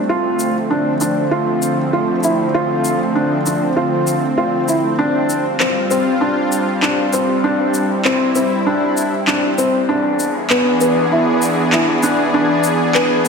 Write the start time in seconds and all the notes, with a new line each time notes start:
Already playing: A3 C4
0.09 D2 D3 F3 F4
0.39 shaker
0.70 D4
1.01 D4, shaker
1.31 F4
1.62 shaker
1.93 F4
2.23 E4, shaker
2.54 F4
2.85 shaker
3.15 D4
3.46 D4, shaker
3.76 F4
4.07 shaker
4.38 F4
4.68 E4, shaker
4.98 G2 G3 D4 F4
5.30 shaker
5.60 C4, clap
5.90 C4, shaker
6.21 D4
6.52 shaker
6.82 D4, clap
7.13 C4, shaker
7.43 D4 E4
7.74 shaker
8.05 C4, clap
8.35 C4, shaker
8.66 D4
8.97 shaker
9.27 D4, clap
9.58 C4, shaker
9.89 E2 E3 B3 D4 G#4
10.20 shaker
10.50 B3, clap
10.81 B3, shaker
11.12 E4
11.42 shaker
11.72 E4, clap
12.03 D4, shaker
12.34 D4
12.64 shaker
12.95 B3, clap
13.25 B3